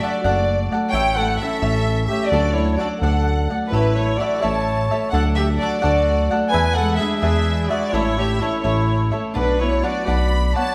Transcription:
Already playing: harp F#3 A3 B3
0.00 cavaquinho D4 A4 D5 F#5, harp D4, trumpet F#4, violin section D5
0.22 analog synth bass F#1, cavaquinho D4 A4 D5 F#5, trumpet F#4, violin section D5
0.71 harp A3, cavaquinho A4 D5 F#5
0.90 analog synth bass A1, cavaquinho E4, trumpet C#5, violin section G5
0.94 harp E3, cavaquinho A4 C#5 E5
1.15 trumpet A4, violin section F#5
1.19 harp A3
1.39 harp C#4, cavaquinho E4 A4 C#5, trumpet A4, violin section E5
1.43 cavaquinho E5
1.62 analog synth bass A1, cavaquinho E4 A4 C#5 E5
2.04 trumpet G4, violin section E5
2.11 harp A3, cavaquinho A4 C#5 E5
2.27 trumpet F#4, violin section D5
2.32 analog synth bass D2, harp F#3, cavaquinho D4 A4 D5 F#5
2.54 trumpet E4, violin section C#5
2.58 harp A3
2.76 harp D4, trumpet F#4, violin section D5
2.80 cavaquinho D4 A4 D5 F#5
2.98 analog synth bass D2, trumpet A4, violin section F#5
3.03 cavaquinho D4 A4 D5 F#5
3.50 harp A3, cavaquinho A4 D5 F#5
3.68 trumpet E4, violin section B4
3.72 analog synth bass A1, harp E3, violin section A3 E4 C#5, cavaquinho E4 A4 C#5 E5
3.95 harp A3, trumpet E4, violin section C#5
4.15 trumpet F#4, violin section D5
4.20 harp C#4, cavaquinho E4 A4 C#5 E5
4.39 trumpet C#5, cavaquinho C#5 E5, violin section A5
4.43 analog synth bass A1, cavaquinho E4 A4
4.91 harp A3, cavaquinho A4 C#5 E5
5.09 analog synth bass D2, trumpet A4, violin section F#5
5.13 harp F#3, violin section D4 A4 F#5, cavaquinho D4 A4 D5 F#5
5.35 trumpet G4, violin section E5
5.39 harp A3
5.57 cavaquinho D4, trumpet F#4, violin section D5
5.62 harp D4, cavaquinho A4 D5 F#5
5.78 trumpet F#4, violin section D5
5.82 analog synth bass D2, cavaquinho D4 A4 D5 F#5
6.31 harp A3, cavaquinho A4 D5 F#5
6.48 trumpet B4, violin section D5 G#5
6.52 analog synth bass E2, harp E3, cavaquinho D4 G#4 B4 E5, violin section E4 G#4
6.74 trumpet A4, violin section F#5
6.80 harp G#3
6.95 violin section E5
6.99 cavaquinho D4 G#4 B4 E5, harp D4, trumpet G#4
7.15 violin section E5
7.20 analog synth bass E2, cavaquinho D4 G#4 B4 E5, trumpet G#4
7.68 harp G#3, trumpet F#4, cavaquinho G#4 B4 E5, violin section D5
7.91 analog synth bass A1, harp E3, violin section A3 C#5, trumpet E4, cavaquinho E4 A4 C#5 E5
8.17 harp A3, trumpet G4, violin section E5
8.40 harp C#4, trumpet E4, cavaquinho E4 A4 C#5 E5, violin section C#5
8.61 analog synth bass A1, cavaquinho E4 A4 C#5 E5, trumpet E4, violin section C#5
9.11 harp A3, cavaquinho A4 C#5 E5
9.34 analog synth bass B1, harp F#3, violin section B3 F#4 B4 D5, cavaquinho D4 B4 D5 F#5, trumpet D4
9.59 harp B3, trumpet E4, violin section C#5
9.83 cavaquinho D4 B4 D5 F#5, harp D4, trumpet F#4, violin section D5
10.06 analog synth bass B1, cavaquinho D4 B4 D5 F#5, trumpet D5, violin section B5
10.55 harp B3, cavaquinho B4 D5 F#5, trumpet C#5, violin section A5

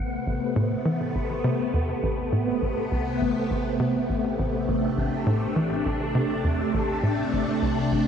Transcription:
Already playing: analog synth bass A1, synth drone A1, string machine C3 A3 B3, synth texture G4 G5
0.26 analog synth bass A1
0.56 analog synth bass A2
0.85 analog synth bass E3
1.15 analog synth bass A1
1.44 analog synth bass C3
1.74 analog synth bass E2
2.03 analog synth bass A1
2.32 analog synth bass A2
2.62 analog synth bass A1
2.91 analog synth bass C2
3.21 analog synth bass A1
3.50 analog synth bass A1
3.80 analog synth bass C3
4.09 analog synth bass A1
4.38 analog synth bass A1
4.68 analog synth bass A1, string machine D4, synth texture D5
4.97 analog synth bass A1
5.26 analog synth bass A2
5.56 analog synth bass E3
5.85 analog synth bass A1
6.15 analog synth bass C3
6.44 analog synth bass E2
6.74 analog synth bass A1
7.03 analog synth bass A2
7.33 analog synth bass A1
7.62 analog synth bass C2
7.91 analog synth bass A1

